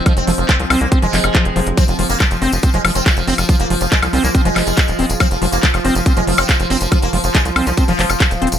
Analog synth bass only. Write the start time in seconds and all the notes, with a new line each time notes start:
0.17 F1
0.28 F1
0.38 F1
0.60 C2
0.70 C2
0.81 C2
1.02 F1
1.13 F1
1.24 F1
1.45 F1
1.56 F1
1.67 F1
1.88 F1
1.99 F1
2.10 F1
2.31 F1
2.42 F1
2.52 F1
2.74 F1
2.85 F1
2.95 F1
3.17 F1
3.27 F1
3.38 F1
3.60 F1
3.70 F1
3.81 F1
4.02 C2
4.13 C2
4.24 C2
4.45 F1
4.56 F1
4.67 F1
4.88 D#1
4.99 D#1
5.10 D#1
5.31 F1
5.42 F1
5.52 F1
5.74 F1
5.85 F1
5.95 F1
6.17 F1
6.27 F1
6.38 F1
6.60 F1
6.70 F1
6.81 F1
7.02 F1
7.13 F1
7.24 F1
7.45 C2
7.56 C2
7.67 C2
7.88 F1
7.99 F1
8.10 F1
8.31 D#1
8.42 D#1
8.52 D#1